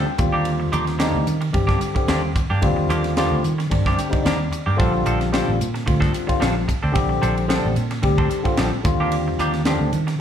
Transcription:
Already playing: G5
0.07 C4 F4, muted clean electric guitar stroke
0.18 D#2 D3 G3 C4 F4, muted clean electric guitar stroke, kick, hi-hat pedal, ride
0.32 A#3 D4 G4
0.45 ride
0.60 muted clean electric guitar stroke
0.72 D#2 F3 A#3 D4 G4, hi-hat pedal, ride
0.86 muted clean electric guitar stroke, snare, ride
0.99 D3 F3 G3 A#3 C4 D4 D#4 G4, snare, ride
1.15 D2
1.27 D#3 C4 G4, hi-hat pedal, ride
1.41 muted clean electric guitar stroke, ride
1.52 G2 D3 G3 C4 G4, muted clean electric guitar stroke, kick, ride
1.67 F3 A#3 D4 G4, kick, snare
1.81 muted clean electric guitar stroke, hi-hat pedal, ride
1.95 D3 G3 C4 G4, muted clean electric guitar stroke, muted fingered electric bass stroke, kick, ride
2.08 D#2 F3 A#3 D4 G4, snare, ride
2.22 C4 G4, muted clean electric guitar stroke
2.36 muted clean electric guitar stroke, kick, hi-hat pedal, ride
2.50 G2 A#3 D4 G4
2.61 D#2 D3 G3 C4 F4, kick, ride
2.76 muted clean electric guitar stroke
2.89 D#2 F3 A#3 D4 G4, hi-hat pedal, ride
3.04 muted clean electric guitar stroke, snare, ride
3.16 D3 F3 G3 A#3 C4 D4 F4 G4, snare, ride
3.31 D2
3.43 D#3 C4 F4, hi-hat pedal, ride
3.58 muted clean electric guitar stroke, snare, ride
3.69 G2 D3 G3 C4 D4, muted clean electric guitar stroke, kick, ride
3.86 F3 A#3 D4 G4, kick, snare
3.97 G5, muted clean electric guitar stroke, hi-hat pedal, ride
4.09 D3 G3 C4 D#4, muted fingered electric bass stroke, kick, ride
4.13 muted clean electric guitar stroke
4.23 D#2 F3 A#3 D4 G4 D5, snare, ride
4.37 C4 D4, muted clean electric guitar stroke
4.52 muted clean electric guitar stroke, hi-hat pedal, ride
4.66 G2 A#3 D4 G4
4.76 A#1 D3 F3 G3 C4 D4 F4 A4, kick, ride
4.93 muted clean electric guitar stroke
5.06 A#1 F3 C4 D4 A4, hi-hat pedal, ride
5.20 muted clean electric guitar stroke, snare, ride
5.32 D3 F3 G3 C4 D4 F4 A4, snare, ride
5.49 A1
5.60 A#2 C4 F4, hi-hat pedal, ride
5.74 muted clean electric guitar stroke, snare, ride
5.86 D2 D3 G3 C4 F4, muted clean electric guitar stroke, kick, ride
6.00 F3 C4 D4 A4, kick, snare
6.13 muted clean electric guitar stroke, hi-hat pedal, ride
6.27 D3 G3 C4 F4, muted clean electric guitar stroke, muted fingered electric bass stroke, kick, ride
6.40 A#1 F3 C4 D4 A4, snare, ride
6.54 C4 F4, muted clean electric guitar stroke
6.68 muted clean electric guitar stroke, kick, hi-hat pedal, ride
6.83 D2 C4 D4 A4
6.92 A#1 D3 G3 C4 G4, kick, ride
7.09 muted clean electric guitar stroke
7.22 A#1 F3 C4 D4 A4, hi-hat pedal, ride
7.36 muted clean electric guitar stroke, ride
7.48 D3 F3 G3 C4 D4 A4, snare, ride
7.65 A1
7.75 A#2 C4 D4, hi-hat pedal, ride
7.91 muted clean electric guitar stroke, snare, ride
8.02 D2 D3 G3 C4 G4, muted clean electric guitar stroke, kick, ride
8.18 F3 C4 D4 A4, kick
8.29 muted clean electric guitar stroke, hi-hat pedal, ride
8.43 D3 G3 C4 F4, muted clean electric guitar stroke, muted fingered electric bass stroke, kick, ride
8.57 A#1 F3 C4 D4 A4, snare, ride
8.70 C4 G4, muted clean electric guitar stroke
8.83 D#2 D3 G3 C4 F4, muted clean electric guitar stroke, kick, hi-hat pedal, ride
9.00 A#3 D4 G4
9.12 ride
9.28 muted clean electric guitar stroke
9.39 D#2 F3 A#3 D4 G4, hi-hat pedal, ride
9.54 muted clean electric guitar stroke, snare, ride
9.65 D3 F3 G3 A#3 C4 D4 G4, snare, ride
9.80 D2
9.92 D#3 C4 F4, hi-hat pedal, ride
10.07 muted clean electric guitar stroke, snare, ride

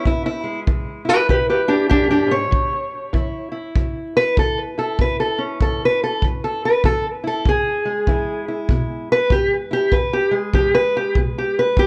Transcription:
Already playing: E4
0.05 E2 E4, kick
0.26 E4
0.44 G#3
0.67 E3, kick
1.05 E4 G4
1.09 B4
1.29 B2 G4 B4, kick
1.50 G4 B4
1.68 D4 G4
1.90 F#2 D4 G4, kick
2.11 D4 G4
2.27 G#2
2.31 C#5
2.51 A2, kick
3.13 E3 E4, kick
3.52 E4
3.75 E3, kick
4.17 B4
4.37 E3 A4, kick
4.78 E4 A4
4.99 A2 B4, kick
5.20 A4
5.38 C#4
5.61 E3 A4, kick
5.85 B4
6.04 A4
6.22 E3, kick
6.44 A4
6.65 B4
6.84 E3 A4, kick
7.24 E4 A4
7.46 E2 G#4, kick
7.85 G#3
8.07 E3 E4, kick
8.48 E4
8.69 B2, kick
9.12 B4
9.30 E3 G4, kick
9.71 E4 G4
9.92 E2 B4, kick
10.13 G4
10.31 G#3
10.54 E3 G4, kick
10.75 B4
10.97 G4
11.15 B2, kick
11.38 G4
11.59 B4
11.77 E3 G4, kick

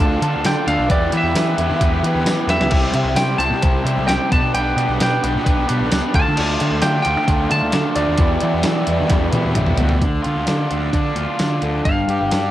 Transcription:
Already playing: A5
0.00 D2 D3 D4 F4 A4
0.22 D3 D4 F4 A4, closed hi-hat
0.36 D2
0.45 D3 D4 F4 A4 G5, snare, closed hi-hat, tambourine
0.67 D2 D3 D4 F4 A4 F5, closed hi-hat
0.78 B1
0.89 E2 E3 B3 E4 G4 B4 D5, kick, closed hi-hat
1.11 E3 B3 E4 G4 B4, closed hi-hat
1.17 E5
1.23 E2
1.35 E3 B3 E4 G4 B4, snare, closed hi-hat, tambourine
1.58 E2 E3 B3 E4 G4 B4, closed hi-hat
1.70 E3
1.81 E2 E3 B3 E4 G4 B4, kick, closed hi-hat
2.03 E3 B3 E4 G4 B4, closed hi-hat
2.14 E2
2.25 E3 B3 E4 G4, snare, closed hi-hat, tambourine
2.30 B4
2.47 E2 E3 B3 E4 G4 B4 E5, snare, closed hi-hat
2.60 C#2, snare
2.71 C2 C3 G3 C4 E4 G4 C5, kick, crash
2.94 C3 G3 C4 E4 G4 C5, closed hi-hat
3.04 C2
3.15 C3 G3 C4 E4 G4 G5, snare, closed hi-hat, tambourine
3.19 C5
3.38 C2 C3 G3 C4 E4 G4 C5 A5, closed hi-hat
3.50 C3
3.61 C2 C3 G3 C4 E4 G4 C5, kick, closed hi-hat
3.84 C3 G3 C4 E4 G4 C5, closed hi-hat
3.97 C2
4.07 C2 C3 G3 C4 E4 G4 C5 G5, snare, closed hi-hat, tambourine
4.30 B1 B3 D4 G4 B4 A5, kick, closed hi-hat
4.42 B2
4.54 B1 B3 D4 G4 B4 G5, closed hi-hat
4.76 B2 B3 D4 G4 B4, closed hi-hat
4.88 B1
4.99 B2 B3 D4 G4 B4 G5, snare, closed hi-hat, tambourine
5.23 B1 B3 D4 G4 B4, closed hi-hat
5.36 B2
5.44 B1 B3 D4 G4 B4, kick, closed hi-hat
5.67 B2 B3 D4 G4 B4, closed hi-hat
5.81 B1
5.90 C#2 B3 D4 G4 B4, snare, closed hi-hat, tambourine
6.14 D2 D3 A3 D4 F4 A5, kick, closed hi-hat
6.28 D3
6.36 D2 D3 A3 D4 F4, crash
6.60 D3 A3 D4 F4, closed hi-hat
6.71 D2
6.82 D3 A3 D4 F4 G5, snare, closed hi-hat, tambourine
7.02 D2 D3 A3 G5, closed hi-hat
7.07 D4 F4
7.17 D3
7.28 D2 D3 A3 D4 F4, kick, closed hi-hat
7.50 D3 A3 D4 F4 A5, closed hi-hat
7.62 D2
7.72 D3 A3 D4 F4, snare, closed hi-hat, tambourine
7.96 D2 D3 A3 D4 F4 D5, closed hi-hat
8.08 D#2
8.18 E2 B2 E3 G3 B3 E4, kick, closed hi-hat
8.41 E2 B2 E3 G3 B3 E4, closed hi-hat
8.54 E2
8.63 E2 B2 E3 G3, snare, closed hi-hat, tambourine
8.67 B3 E4
8.87 E2 B2 E3 G3 B3 E4, closed hi-hat
9.00 E3
9.09 E2 B2 E3 G3 B3 E4, kick, snare, closed hi-hat
9.32 E2 B2 E3 G3 B3 E4, closed hi-hat, high tom
9.45 E2
9.55 B1 E2 B2 E3 G3 B3 E4, closed hi-hat, mid tom
9.66 mid tom
9.77 D2 E2 B2 E3 G3 B3 E4, closed hi-hat, floor tom
9.89 floor tom
10.01 D2 D3, kick, closed hi-hat
10.22 D3 F4, closed hi-hat
10.36 D2
10.46 D3 D4, snare, closed hi-hat, tambourine
10.70 D2 D3, closed hi-hat
10.93 D3 D4, kick, closed hi-hat
11.16 D2 F4, closed hi-hat
11.39 D3 D4, snare, closed hi-hat, tambourine
11.62 D2 D3, closed hi-hat
11.85 G1 G2 F5, kick, closed hi-hat
12.08 G2 G4, closed hi-hat
12.21 G1
12.31 G2 D4, snare, closed hi-hat, tambourine

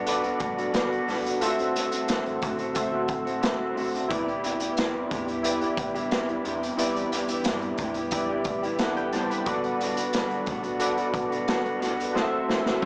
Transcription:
Already playing: B1 G3 B3 D4 F#4 A4 B4 D5
0.06 F#4 A4 B4 D5, closed hi-hat
0.23 B3 D4 F#4, closed hi-hat
0.40 F#1, kick, closed hi-hat
0.57 B3 D4 F#4, closed hi-hat
0.73 G1 G3 B3 D4 F#4, snare, closed hi-hat
0.90 B3 D4 F#4, closed hi-hat
1.07 B1 G3 B3 D4 F#4, snare, open hi-hat
1.26 closed hi-hat
1.40 D1 D3 A3 C4 E4 F4 F#4 A4 C5 E5, closed hi-hat
1.47 F#4
1.59 A3 C4 F#4, closed hi-hat
1.75 D1 D3 A3 C4 F#4, closed hi-hat
1.91 A3 C4 F#4, closed hi-hat
2.08 A1 D3 A3 C4 F#4, snare, closed hi-hat
2.26 closed hi-hat
2.42 F#1 D3 A3 C4 F#4, kick, closed hi-hat
2.58 A3 C4 F#4, closed hi-hat
2.74 F#4 A4 C5 E5, kick, closed hi-hat
2.91 A3 C4 F#4
3.08 D1, kick, closed hi-hat
3.25 A3 C4 F#4, closed hi-hat
3.41 D1 D3 A3 C4 F#4, snare, closed hi-hat
3.58 A3 C4 F#4
3.75 B1 D3 A3 C4 F#4, open hi-hat
3.95 closed hi-hat
4.08 C2 C3 E3 G3 B3 D4 E4 G4 B4 D5, kick, closed hi-hat
4.26 B3 E4 G4, closed hi-hat
4.43 C2 C3 B3 E4 G4, closed hi-hat
4.60 B3 E4 G4, closed hi-hat
4.77 C2 C3 B3 E4 G4, snare, closed hi-hat
5.11 E2 C3 B3 E4 G4, kick, closed hi-hat
5.26 B3 E4 G4, closed hi-hat
5.43 E4 G4 B4 D5, closed hi-hat
5.61 B3 E4 G4, closed hi-hat
5.77 B1, kick, closed hi-hat
5.95 B3 E4 G4, closed hi-hat
6.11 C2 C3 B3 E4 G4, snare, closed hi-hat
6.28 B3 E4 G4, closed hi-hat
6.44 E2 C3 B3 E4 G4, closed hi-hat
6.63 closed hi-hat
6.77 C2 C3 B3 E4 G4 B4 D5, closed hi-hat
6.96 closed hi-hat
7.11 C2 C3 B3 E4 G4, closed hi-hat
7.28 B3 E4 G4, closed hi-hat
7.44 G2 C3 B3, snare, closed hi-hat
7.48 E4 G4
7.62 closed hi-hat
7.78 E2 C3 B3, kick, closed hi-hat
7.82 E4 G4
7.94 G4, closed hi-hat
7.98 B3 E4
8.11 E4 G4 B4 D5, kick, closed hi-hat
8.29 B3 E4 G4
8.44 C2, kick, closed hi-hat
8.63 B3 E4 G4, closed hi-hat
8.79 C2 C3 B3 E4 G4 A4 F#5, snare, closed hi-hat
8.96 B3 E4 G4 B4 G5, closed hi-hat
9.12 F#1 C3 B3 E4 G4 C5 A5, snare, closed hi-hat
9.30 D5 B5, closed hi-hat
9.46 G1 G3 B3 D4 F#4 A4 B4 D5, kick, closed hi-hat
9.64 closed hi-hat
9.79 G1 G3 B3 D4 F#4, closed hi-hat
9.96 B3 D4 F#4, closed hi-hat
10.13 G1 G3 B3 D4 F#4, snare, closed hi-hat
10.31 closed hi-hat
10.46 B1 G3 B3 D4, kick, closed hi-hat
10.51 F#4
10.63 B3 D4 F#4, closed hi-hat
10.79 F#4 A4 B4 D5, closed hi-hat
10.97 B3 D4 F#4, closed hi-hat
11.13 F#1, kick, closed hi-hat
11.30 B3 D4 F#4, closed hi-hat
11.47 G1 G3 B3 D4 F#4, snare, closed hi-hat
11.63 B3 D4 F#4, closed hi-hat
11.79 B1 G3 B3 D4 F#4, snare, closed hi-hat
12.00 closed hi-hat
12.13 D1 D3 A3 C4 E4 F#4 A4 C5 D#5, snare
12.22 E5
12.31 A3 C4 F#4
12.48 D1 D3 A3 C4 F#4, snare
12.64 A3 C4 F#4, snare
12.81 A1 D3 A3

